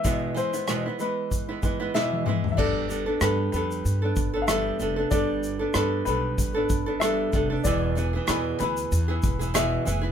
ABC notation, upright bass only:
X:1
M:4/4
L:1/8
Q:"Swing 16ths" 1/4=95
K:Gmix
V:1 name="Upright bass" clef=bass
z8 | G,,,2 G,, F,, G,, G,,,2 F,,, | G,,,2 G,, B,,, G,,, G,,,2 F,,, | E,,,2 E,, D,, E,, E,,,2 F,,, |]